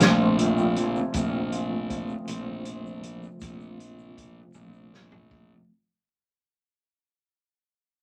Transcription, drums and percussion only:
0.00 snare medium
0.00 closed hi-hat medium
0.00 shaker medium
0.39 closed hi-hat medium
0.58 shaker soft
0.76 closed hi-hat medium
0.96 shaker soft
1.14 kick medium
1.14 closed hi-hat medium
1.14 shaker medium
1.52 closed hi-hat medium
1.90 kick medium
1.90 closed hi-hat medium
2.09 shaker soft
2.28 closed hi-hat medium
2.28 shaker medium
2.65 closed hi-hat medium
2.86 shaker soft
3.03 closed hi-hat medium
3.23 shaker soft
3.41 kick medium
3.41 closed hi-hat medium
3.41 shaker medium
3.61 shaker soft
3.80 closed hi-hat medium
3.99 shaker soft
4.17 kick medium
4.17 closed hi-hat medium
4.53 high tom soft
4.53 shaker medium
4.73 shaker soft
4.94 snare medium
5.12 mid tom medium
5.31 kick medium

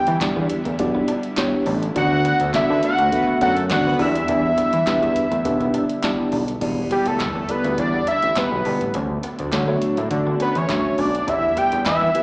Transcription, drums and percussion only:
0.07 closed hi-hat medium
0.21 kick loud
0.21 snare loud
0.21 clap medium
0.21 closed hi-hat loud
0.50 closed hi-hat medium
0.65 closed hi-hat medium
0.79 kick loud
0.79 closed hi-hat loud
1.08 closed hi-hat medium
1.23 closed hi-hat medium
1.36 kick loud
1.36 snare loud
1.36 clap loud
1.36 closed hi-hat loud
1.66 open hi-hat medium
1.83 closed hi-hat medium
1.96 kick loud
1.96 closed hi-hat medium
2.25 closed hi-hat medium
2.40 closed hi-hat medium
2.54 kick loud
2.54 snare loud
2.54 clap medium
2.54 closed hi-hat medium
2.83 closed hi-hat medium
2.98 closed hi-hat medium
3.12 kick loud
3.12 closed hi-hat medium
3.41 closed hi-hat medium
3.57 closed hi-hat medium
3.70 kick loud
3.70 snare loud
3.70 clap loud
3.70 closed hi-hat loud
3.99 open hi-hat medium
4.15 closed hi-hat medium
4.28 kick loud
4.28 closed hi-hat medium
4.58 closed hi-hat medium
4.73 closed hi-hat medium
4.87 kick loud
4.87 snare loud
4.87 clap medium
4.87 closed hi-hat medium
5.03 closed hi-hat soft
5.16 closed hi-hat medium
5.32 closed hi-hat medium
5.45 kick loud
5.45 closed hi-hat medium
5.61 closed hi-hat soft
5.74 closed hi-hat medium
5.89 closed hi-hat medium
6.03 kick loud
6.03 snare loud
6.03 clap medium
6.03 closed hi-hat loud
6.32 open hi-hat medium
6.48 closed hi-hat medium
6.61 kick loud
6.61 closed hi-hat medium
6.61 crash medium
6.91 closed hi-hat medium
7.06 closed hi-hat medium
7.20 kick loud
7.20 snare loud
7.20 clap medium
7.20 closed hi-hat medium
7.49 closed hi-hat medium
7.64 closed hi-hat soft
7.78 kick loud
7.78 closed hi-hat loud
8.07 closed hi-hat medium
8.22 closed hi-hat medium
8.35 kick loud
8.35 snare loud
8.35 clap loud
8.35 closed hi-hat medium
8.65 open hi-hat medium
8.81 closed hi-hat medium
8.94 kick loud
8.94 closed hi-hat medium
9.23 closed hi-hat medium
9.39 closed hi-hat medium
9.52 kick loud
9.52 snare loud
9.52 clap medium
9.52 closed hi-hat medium
9.82 closed hi-hat medium
9.97 closed hi-hat medium
10.11 kick loud
10.11 closed hi-hat loud
10.40 closed hi-hat medium
10.55 closed hi-hat medium
10.69 kick loud
10.69 snare loud
10.69 clap loud
10.69 closed hi-hat medium
10.98 open hi-hat medium
11.15 closed hi-hat medium
11.28 kick loud
11.28 closed hi-hat medium
11.57 closed hi-hat medium
11.72 closed hi-hat medium
11.85 kick loud
11.85 snare loud
11.85 clap medium
11.85 closed hi-hat medium
12.15 closed hi-hat medium

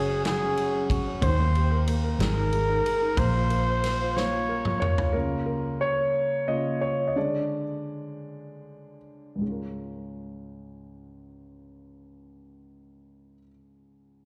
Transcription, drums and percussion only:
0.25 snare loud
0.25 ride medium
0.57 ride soft
0.90 kick medium
0.90 ride medium
1.22 kick loud
1.22 ride medium
1.55 ride soft
1.88 ride medium
2.20 snare loud
2.20 ride medium
2.52 ride soft
2.86 ride medium
3.17 kick loud
3.17 ride medium
3.50 ride soft
3.84 snare soft
3.84 ride medium
4.17 snare medium
4.65 mid tom medium
4.82 mid tom medium
4.98 floor tom loud

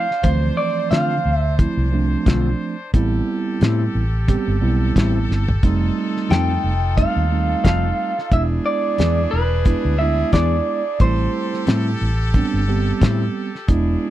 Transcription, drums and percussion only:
0.11 snare soft
0.23 kick loud
0.23 closed hi-hat medium
0.91 snare loud
0.91 closed hi-hat medium
1.59 kick loud
1.59 closed hi-hat medium
2.26 kick medium
2.26 snare loud
2.26 closed hi-hat medium
2.94 kick loud
2.94 closed hi-hat medium
3.61 snare loud
3.61 closed hi-hat medium
4.28 kick loud
4.28 closed hi-hat medium
4.96 kick medium
4.96 snare loud
4.96 closed hi-hat medium
5.31 snare medium
5.49 floor tom medium
5.63 kick loud
5.63 closed hi-hat medium
6.17 snare soft
6.30 snare loud
6.30 closed hi-hat medium
6.98 kick loud
6.98 closed hi-hat medium
7.65 kick medium
7.65 snare loud
7.65 closed hi-hat medium
8.19 snare soft
8.31 kick loud
8.31 closed hi-hat medium
8.98 snare loud
8.98 closed hi-hat medium
9.65 kick loud
9.65 closed hi-hat medium
10.32 kick medium
10.32 snare loud
10.32 closed hi-hat medium
11.00 kick loud
11.00 closed hi-hat medium
11.54 snare soft
11.67 snare medium
11.67 closed hi-hat medium
12.34 kick medium
12.34 closed hi-hat soft
13.01 kick medium
13.01 snare loud
13.01 closed hi-hat medium
13.55 snare soft
13.68 kick loud
13.68 closed hi-hat medium

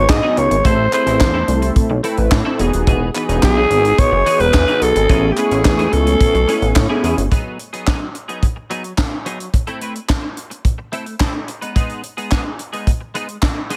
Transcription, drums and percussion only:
0.09 kick loud
0.09 snare loud
0.09 clap medium
0.09 clap loud
0.37 closed hi-hat medium
0.51 closed hi-hat medium
0.65 kick loud
0.65 closed hi-hat loud
0.92 clap medium
0.92 closed hi-hat medium
1.07 closed hi-hat medium
1.21 kick loud
1.21 snare loud
1.21 clap medium
1.48 closed hi-hat medium
1.62 closed hi-hat medium
1.76 kick loud
1.76 closed hi-hat medium
2.04 closed hi-hat medium
2.17 closed hi-hat soft
2.31 kick loud
2.31 snare loud
2.31 clap medium
2.31 clap loud
2.59 closed hi-hat medium
2.73 closed hi-hat medium
2.87 kick loud
2.87 closed hi-hat medium
3.15 clap medium
3.15 closed hi-hat medium
3.29 closed hi-hat medium
3.43 kick loud
3.43 snare loud
3.43 clap medium
3.70 closed hi-hat medium
3.85 closed hi-hat medium
3.98 kick loud
3.98 closed hi-hat medium
4.26 closed hi-hat medium
4.40 closed hi-hat soft
4.54 kick loud
4.54 snare loud
4.54 clap medium
4.54 clap loud
4.68 closed hi-hat soft
4.82 closed hi-hat medium
4.96 closed hi-hat medium
5.09 kick loud
5.09 closed hi-hat medium
5.37 clap medium
5.37 closed hi-hat medium
5.51 closed hi-hat medium
5.65 kick loud
5.65 snare loud
5.65 clap medium
5.79 closed hi-hat soft
5.93 closed hi-hat medium
6.07 closed hi-hat medium
6.20 kick loud
6.20 closed hi-hat medium
6.35 closed hi-hat soft
6.48 closed hi-hat medium
6.62 closed hi-hat soft
6.76 kick loud
6.76 snare loud
6.76 clap medium
6.76 clap loud
7.04 closed hi-hat medium
7.18 closed hi-hat medium
7.32 kick loud
7.32 closed hi-hat medium
7.59 closed hi-hat medium
7.73 closed hi-hat soft
7.87 kick loud
7.87 snare medium
7.87 clap medium
8.15 closed hi-hat medium
8.29 closed hi-hat soft
8.43 kick medium
8.43 closed hi-hat medium
8.70 closed hi-hat medium
8.84 closed hi-hat soft
8.98 kick loud
8.98 snare loud
8.98 clap medium
9.26 closed hi-hat medium
9.40 closed hi-hat medium
9.54 kick loud
9.54 closed hi-hat medium
9.67 closed hi-hat soft
9.81 closed hi-hat medium
9.95 closed hi-hat soft
10.09 kick loud
10.09 snare loud
10.09 clap medium
10.37 closed hi-hat medium
10.51 closed hi-hat soft
10.65 kick loud
10.65 closed hi-hat medium
10.93 closed hi-hat medium
11.06 closed hi-hat soft
11.20 kick loud
11.20 snare loud
11.20 clap medium
11.48 closed hi-hat medium
11.62 closed hi-hat soft
11.76 kick loud
11.76 closed hi-hat medium
11.89 closed hi-hat soft
12.03 closed hi-hat medium
12.18 closed hi-hat soft
12.32 kick loud
12.32 snare medium
12.32 clap medium
12.59 closed hi-hat medium
12.73 closed hi-hat soft
12.87 kick medium
12.87 closed hi-hat medium
13.15 closed hi-hat medium
13.28 closed hi-hat soft
13.42 kick loud
13.42 snare loud
13.42 clap medium
13.70 closed hi-hat medium

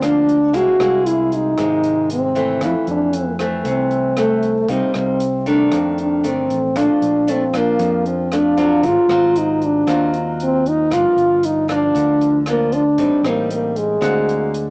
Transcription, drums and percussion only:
0.02 cross-stick medium
0.02 closed hi-hat soft
0.28 kick soft
0.28 closed hi-hat soft
0.54 kick medium
0.54 closed hi-hat soft
0.80 cross-stick medium
0.80 closed hi-hat soft
1.06 closed hi-hat soft
1.32 kick soft
1.32 closed hi-hat soft
1.58 kick medium
1.58 cross-stick medium
1.58 closed hi-hat soft
1.83 closed hi-hat soft
2.10 closed hi-hat soft
2.36 kick soft
2.36 closed hi-hat soft
2.61 kick medium
2.61 cross-stick medium
2.61 closed hi-hat soft
2.87 closed hi-hat soft
3.13 closed hi-hat soft
3.39 kick soft
3.39 cross-stick medium
3.39 closed hi-hat soft
3.65 kick medium
3.65 closed hi-hat soft
3.91 closed hi-hat soft
4.17 cross-stick medium
4.17 closed hi-hat soft
4.43 kick soft
4.43 closed hi-hat soft
4.68 kick medium
4.68 closed hi-hat soft
4.94 cross-stick medium
4.94 closed hi-hat soft
5.20 closed hi-hat soft
5.46 kick soft
5.46 closed hi-hat soft
5.72 kick medium
5.72 cross-stick medium
5.72 closed hi-hat soft
5.98 closed hi-hat soft
6.24 closed hi-hat soft
6.50 kick soft
6.50 closed hi-hat soft
6.76 kick medium
6.76 cross-stick medium
6.76 closed hi-hat soft
7.02 closed hi-hat soft
7.28 closed hi-hat soft
7.54 kick soft
7.54 cross-stick medium
7.54 closed hi-hat soft
7.79 kick medium
7.79 closed hi-hat soft
8.06 closed hi-hat soft
8.32 cross-stick medium
8.32 closed hi-hat soft
8.58 kick soft
8.58 closed hi-hat soft
8.83 kick medium
8.83 closed hi-hat soft
9.09 cross-stick medium
9.09 closed hi-hat soft
9.36 closed hi-hat soft
9.62 kick soft
9.62 closed hi-hat soft
9.88 kick medium
9.88 cross-stick medium
9.88 closed hi-hat soft
10.14 closed hi-hat soft
10.40 closed hi-hat soft
10.65 kick soft
10.65 closed hi-hat soft
10.91 kick medium
10.91 cross-stick medium
10.91 closed hi-hat soft
11.18 closed hi-hat soft
11.43 closed hi-hat soft
11.69 kick soft
11.69 cross-stick medium
11.69 closed hi-hat soft
11.95 kick medium
11.95 closed hi-hat soft
12.21 closed hi-hat soft
12.46 cross-stick medium
12.46 closed hi-hat soft
12.72 kick soft
12.72 closed hi-hat soft
12.98 kick medium
12.98 closed hi-hat soft
13.24 cross-stick medium
13.24 closed hi-hat soft
13.50 closed hi-hat soft
13.76 kick soft
13.76 closed hi-hat soft
14.02 kick medium
14.02 cross-stick medium
14.02 closed hi-hat soft
14.29 closed hi-hat soft
14.54 closed hi-hat soft

